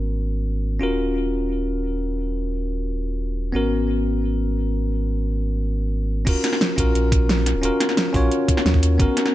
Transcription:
Already playing: G#1 B3 C#4 F#4 A#4
0.80 D#1 C#4 F4 F#4 A#4
3.52 G#1 B3 C#4 F#4 A#4
6.25 D#1 C#4 F4 F#4 A#4, kick, closed hi-hat, crash
6.44 snare, closed hi-hat
6.53 snare
6.61 snare, closed hi-hat
6.76 A#1 C#4 F4 F#4 A#4, kick, closed hi-hat
6.95 A#1, closed hi-hat
7.12 kick, closed hi-hat
7.29 snare, closed hi-hat
7.46 snare, closed hi-hat
7.55 D#1
7.62 D#1 C#4 F4 F#4 A#4, closed hi-hat
7.80 snare, closed hi-hat
7.89 snare
7.97 snare, closed hi-hat
8.13 A#1 C#4 F4 F#4 C#5, kick, open hi-hat
8.32 closed hi-hat
8.48 kick, closed hi-hat
8.57 snare
8.65 D#2, snare, closed hi-hat
8.74 kick
8.83 closed hi-hat
8.98 G#1 B3 C#4 F#4 A#4, kick, closed hi-hat
9.17 snare, closed hi-hat
9.26 snare

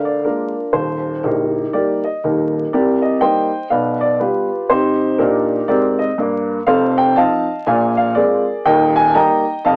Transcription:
Already playing: D2 D3 A#4 D5 F5
0.05 D5
0.24 G#3 A#3 D4 F4 A#4
0.73 D#1 D#2 C5
1.23 A#0 A#1 D#4 G4 A#4
1.73 G3 A#3 D#4 G4 A#4 D5
2.04 D#5
2.24 D#1 D#2 D#4 G4 A#4
2.73 C2 C3 G4 A#4 D5
3.02 D#5
3.21 G3 A#3 D#4 C5 D#5 G5
3.70 B1 B2 B4 D5 F5
4.01 D5
4.20 G3 B3 F4 G4 B4
4.70 C3 D#4 G4 C5
5.19 A#2 D4 D#4 G4 A#4
5.68 G#2 C4 G4 A#4 D5
5.99 D#5
6.18 G2 A#3
6.67 F1 F2 A4 C5 F5
6.98 G5
7.16 F3 C4 D#4 D#5 F5 A5
7.66 A#1 A#2 D5 F5 G#5
7.97 F5
8.15 G#3 C4 F4 G#4 A#4 D5
8.65 D#1 D#2 A#4 D#5 G5
8.96 G#5
9.10 A5
9.15 G3 A#3 D#4 D#5 G5 A#5
9.64 F1 F2 D#5 F5 A5

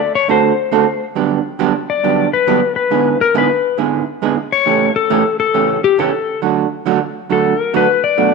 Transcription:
Already playing: D5
0.15 C#5
0.28 D3 A3 C4 F#4 A4 C5
0.72 D3 A3 C4 F#4 A4
1.15 G2 D3 F#3 B3 D4 G4
1.59 G2 D3 F#3 B3 D4 G4
1.90 D5
2.03 G2 D3 F#3 B3 D4 G4
2.33 B4
2.47 G2 D3 F#3 B3 D4 G4
2.76 B4
2.91 G#2 D3 G#3 B3 E4 G#4
3.21 A#4
3.34 G#2 D3 G#3 B3 E4 G#4 B4
3.78 G#2 D3 G#3 B3 E4 G#4
4.22 G#2 D3 G#3 B3 E4 G#4
4.52 C#5
4.66 A2 C#3 E3 A3 C#4 G4
4.96 A4
5.10 A2 C#3 E3 A3 C#4 G4
5.40 A4
5.54 A2 C#3 E3 A3 C#4 G4
5.84 G4
5.98 A2 C#3 E3 A3 C#4 G4 A4
6.42 D3 F#3 A3 D4 F#4
6.86 D3 F#3 A3 D4 F#4
7.30 D3 F#3 A3 D4 F#4 A4
7.60 A#4
7.74 D3 F#3 A3 D4 F#4 B4
8.04 D5
8.17 B2 F#3 A3 D4 F#4

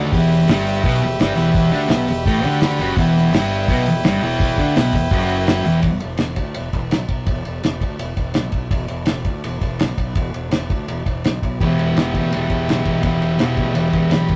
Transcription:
Already playing: D3 D4 D5
0.00 A3
0.12 E1 E2 E3 G4 B4, kick, open hi-hat
0.16 E5
0.32 open hi-hat
0.42 snare
0.47 G1 G2 G3, snare, open hi-hat
0.67 open hi-hat
0.84 B1 B2 B3, kick, open hi-hat
1.01 E1 E2, open hi-hat
1.19 G1 G2 G3, snare, open hi-hat
1.36 E1 E2 E3, open hi-hat
1.54 kick, open hi-hat
1.72 D2 D3 D4, open hi-hat
1.89 B1 B2 B3, snare, open hi-hat
2.07 E1 E2 E5, open hi-hat
2.26 A1 A2 A3 G5, kick, open hi-hat
2.43 D2 D3 D4, open hi-hat
2.61 B5, snare, open hi-hat
2.78 F#1 F#2 F#3, open hi-hat
2.97 E1 E2 E3 E4 B4, kick, open hi-hat
3.01 G5
3.16 snare, open hi-hat
3.32 G1 G2 G3, snare, open hi-hat
3.51 open hi-hat
3.68 B1 B2 B3, kick, open hi-hat
3.86 E1 E2, open hi-hat
4.04 G1 G2 G3, snare, open hi-hat
4.21 E1 E2 E3, open hi-hat
4.40 kick, open hi-hat
4.58 D2 D3 D4, kick, open hi-hat
4.75 B1 B2 B3, snare, open hi-hat
4.92 E1 E2, kick, open hi-hat
5.10 F#1 F#2 F#3, kick, open hi-hat
5.29 open hi-hat
5.47 snare, open hi-hat
5.65 E1 E2 E3, open hi-hat
5.83 E1, kick, ride
6.00 E1, ride
6.17 E1, snare, ride
6.36 D2, kick, ride
6.54 E1, ride
6.73 E1, kick, ride
6.91 B1, snare, ride
7.08 B1, kick, ride
7.26 E1, kick, ride
7.45 E1, ride
7.63 E1, snare, ride
7.81 D2, kick, ride
7.99 E1, ride
8.17 E1, kick, ride
8.34 B1, snare, ride
8.52 B1, kick, ride
8.71 E1, kick, ride
8.88 E1, ride
9.06 E1, snare, ride
9.25 D2, kick, ride
9.44 E1, ride
9.61 E1, kick, ride
9.79 B1, snare, ride
9.97 B1, kick, ride
10.15 E1, kick, ride
10.34 E1, ride
10.51 E1, snare, ride
10.70 D2, kick, ride
10.88 E1, ride
11.06 E1, kick, ride
11.24 B1, snare, ride
11.42 B1, kick, ride
11.60 E1 E2 B2 E3 G4 B4 E5, kick, ride
11.79 E1, ride
11.95 E1 E2 B2, snare, ride
12.00 E3
12.14 D2 B2 E3, kick, ride
12.32 E1 E2 B2 E3, ride
12.49 E1 B2 E3, kick, ride
12.68 B1, snare, ride
12.85 B1 B2 E3, kick, ride
13.01 E1 E2 B2 E3, kick, ride
13.20 E1, ride
13.38 E1 E2 B2 E3, snare, ride
13.56 D2 B2 E3, kick, ride
13.74 E1 E2 B2 E3, ride
13.93 E1 B2 E3, kick, ride
13.97 E5
14.09 B1 B5, snare, ride
14.28 B1 B2 E3, kick, ride

